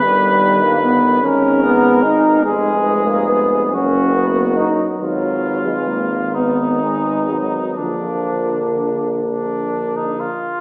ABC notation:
X:1
M:6/8
L:1/16
Q:3/8=46
K:Abdor
V:1 name="French horn section"
B6 A6 | c6 B6 | c6 c6 | B8- B2 z2 |]
V:2 name="Flugelhorn"
c6 B6 | A6 G4 z2 | F6 E6 | =D6 D3 E F2 |]
V:3 name="Trombone section"
=G,3 B, C2 D2 C2 E2 | A,3 B, C2 D2 C2 E2 | G,3 A, B,2 C2 A,2 G,2 | F,6 z6 |]
V:4 name="Trombone" clef=bass
E,6 E,6 | A,6 G,6 | E,6 E,6 | =D,8- D,2 z2 |]
V:5 name="Tuba" clef=bass
=G,,,6 A,,,6 | F,,,6 G,,,6 | A,,,12 | B,,,8- B,,,2 z2 |]